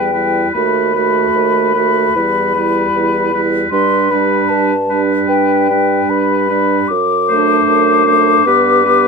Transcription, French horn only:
0.00 0.13 G3 soft
0.14 0.54 G3 soft
0.55 0.95 A3 soft
0.95 1.74 A3 soft
1.75 2.15 A3 soft
2.17 2.55 G3 soft
2.55 3.32 G3 soft
3.34 3.70 G3 soft
3.71 4.10 G3 soft
4.12 4.72 G3 soft
4.89 5.68 G3 soft
5.71 6.49 G3 soft
6.51 6.89 G3 soft
7.31 8.06 A3 soft
8.06 8.45 A3 soft
8.46 8.84 B3 soft
8.85 9.08 B3 soft

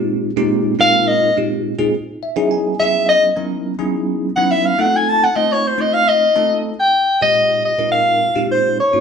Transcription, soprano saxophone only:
0.80 1.09 F5 loud
1.07 1.36 D#5 medium
2.79 3.06 E5 loud
3.09 3.26 D#5 loud
4.36 4.53 F#5 medium
4.51 4.67 E5 medium
4.65 4.82 F5 medium
4.80 4.98 F#5 loud
4.96 5.10 G#5 medium
5.09 5.25 A5 loud
5.24 5.37 F#5 loud
5.36 5.54 D#5 medium
5.52 5.68 C#5 medium
5.67 5.82 C5 medium
5.81 5.95 D#5 medium
5.94 6.10 F5 loud
6.08 6.65 D#5 medium
6.80 7.19 G5 loud
7.22 7.62 D#5 loud
7.65 7.91 D#5 medium
7.92 8.46 F5 loud
8.51 8.78 C5 medium
8.80 9.00 C#5 medium

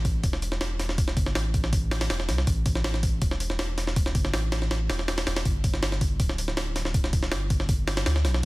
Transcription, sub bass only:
0.00 0.22 A1 loud
0.24 1.15 E1 medium
1.17 1.37 G1 medium
1.35 2.08 A1 medium
2.10 2.30 E1 medium
2.29 2.45 C2 loud
2.47 3.20 A1 loud
3.22 4.13 E1 medium
4.15 4.35 G1 medium
4.34 4.89 A1 medium
4.90 5.25 E1 medium
5.27 5.43 E1 loud
5.45 6.18 G1 loud
6.20 7.11 D1 medium
7.13 7.33 D1 medium
7.32 8.05 G1 medium
8.06 8.26 D2 medium
8.25 8.42 B1 medium

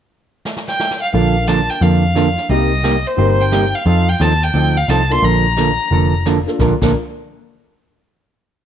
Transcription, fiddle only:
0.68 0.99 G5 medium
1.02 1.13 F5 medium
1.14 1.49 F5 medium
1.47 1.71 A5 medium
1.70 1.84 G5 medium
1.82 2.50 F5 medium
2.51 3.08 D#5 medium
3.07 3.42 C5 medium
3.41 3.76 G5 medium
3.75 3.87 F5 medium
3.87 4.10 F5 loud
4.08 4.23 G5 loud
4.21 4.45 A5 loud
4.43 4.78 G5 loud
4.77 4.91 F5 loud
4.89 5.13 A5 loud
5.11 5.25 C6 loud
5.24 6.26 A#5 loud

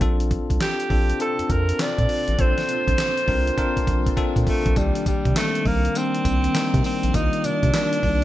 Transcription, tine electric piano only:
0.01 0.63 C4 loud
0.01 0.63 D4 medium
0.01 0.64 F4 medium
0.01 0.64 A4 loud
0.90 1.13 C4 medium
0.90 1.13 D4 medium
0.90 1.14 F4 medium
0.90 1.14 A4 medium
1.20 1.64 C4 medium
1.20 1.64 D4 medium
1.20 1.64 F4 medium
1.20 1.65 A4 medium
1.79 2.24 C4 medium
1.79 2.24 D4 medium
1.79 2.24 F4 medium
1.79 2.24 A4 loud
2.38 3.01 C4 medium
2.38 3.01 D4 medium
2.38 3.01 F4 medium
2.38 3.01 A4 loud
3.28 3.51 C4 loud
3.28 3.51 D4 medium
3.28 3.51 F4 medium
3.28 3.51 A#4 loud
3.58 4.02 C4 loud
3.58 4.02 D4 loud
3.58 4.02 F4 medium
3.58 4.02 A#4 loud
4.17 4.61 C4 loud
4.17 4.61 D4 medium
4.17 4.61 F4 loud
4.17 4.62 A4 loud
4.76 5.21 D#3 medium
4.76 5.21 G3 medium
4.76 5.21 A#3 medium
4.76 5.21 D4 medium
5.35 5.80 D#3 medium
5.35 5.80 G3 medium
5.35 5.80 A#3 medium
5.35 5.80 C4 loud
5.94 6.39 D#3 medium
5.94 6.39 G3 medium
5.94 6.40 A#3 medium
5.94 6.40 D4 medium
6.55 6.99 D#3 medium
6.55 6.99 G3 medium
6.55 6.99 A#3 medium
6.55 6.99 D#4 loud
7.14 7.58 D#3 medium
7.14 7.59 G3 medium
7.14 7.59 A#3 medium
7.14 7.59 F4 medium
7.73 8.18 D#3 medium
7.73 8.18 G3 medium
7.73 8.18 A#3 medium
7.73 8.18 D4 loud

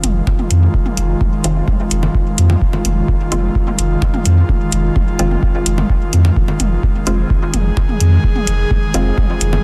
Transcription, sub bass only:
0.04 0.21 F1 medium
0.51 0.68 F2 medium
0.97 1.15 F1 loud
1.44 1.61 F1 loud
1.91 2.08 F1 loud
2.38 2.55 F2 medium
2.85 3.02 F1 loud
3.32 3.49 F1 loud
3.79 3.96 F1 medium
4.26 4.43 F2 medium
4.72 4.90 F1 loud
5.19 5.36 F1 loud
5.66 5.83 F1 medium
6.13 6.30 F2 medium
6.60 6.77 F1 loud
7.07 7.24 F1 loud
7.54 7.71 F1 loud
8.01 8.18 F2 medium
8.47 8.65 F1 loud
8.94 9.11 F1 loud
9.41 9.58 F1 medium

